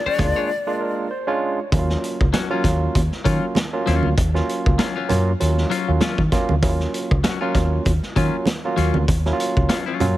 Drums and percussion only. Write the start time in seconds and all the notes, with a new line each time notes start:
0.19 kick, snare, closed hi-hat, muted conga, low conga
1.72 kick, closed hi-hat, muted conga
1.90 snare
2.04 closed hi-hat
2.21 kick
2.33 snare, closed hi-hat, high conga
2.64 kick, snare, closed hi-hat, muted conga
2.95 kick, closed hi-hat, muted conga
3.12 snare
3.25 kick, closed hi-hat
3.55 snare, closed hi-hat, high conga
3.87 snare, closed hi-hat
4.03 high conga
4.18 kick, closed hi-hat, muted conga
4.35 snare
4.49 closed hi-hat
4.66 kick
4.79 snare, closed hi-hat, high conga
5.09 closed hi-hat, muted conga, low conga
5.40 closed hi-hat
5.58 snare
5.71 closed hi-hat
6.01 snare, closed hi-hat, high conga
6.18 kick
6.32 kick, snare, closed hi-hat
6.49 high conga
6.63 kick, closed hi-hat, muted conga
6.80 snare
6.94 closed hi-hat
7.11 kick
7.24 snare, closed hi-hat, high conga
7.55 kick, snare, closed hi-hat, muted conga
7.85 kick, closed hi-hat, muted conga
8.03 snare
8.16 kick, closed hi-hat
8.45 snare, closed hi-hat, high conga
8.77 snare, closed hi-hat
8.94 high conga
9.08 kick, closed hi-hat, muted conga
9.26 snare
9.40 closed hi-hat
9.57 kick
9.69 snare, closed hi-hat, high conga
10.00 closed hi-hat, muted conga, low conga